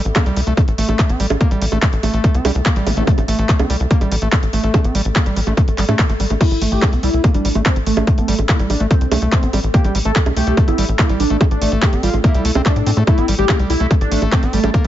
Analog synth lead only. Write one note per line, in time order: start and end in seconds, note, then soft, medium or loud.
6.41 6.59 E4 loud
6.72 6.90 G4 loud
7.03 7.22 E4 medium
7.34 7.53 D4 medium
7.66 7.78 C4 medium
7.86 8.05 A3 loud
8.18 8.36 A3 loud
8.49 8.61 E4 medium
8.70 8.82 D4 medium
8.91 9.15 C4 medium
9.32 9.57 C4 medium
9.74 9.92 G4 loud
10.05 10.24 A4 loud
10.37 10.55 G4 medium
10.68 10.86 E4 medium
10.99 11.11 E4 medium
11.20 11.38 D4 loud
11.51 11.70 D4 loud
11.82 11.95 G4 medium
12.03 12.16 F4 medium
12.24 12.49 E4 loud
12.66 12.90 D4 loud
13.07 13.26 E4 loud
13.39 13.57 G4 loud
13.70 13.88 E4 medium
14.01 14.20 D4 medium
14.32 14.45 C4 medium
14.53 14.72 A3 loud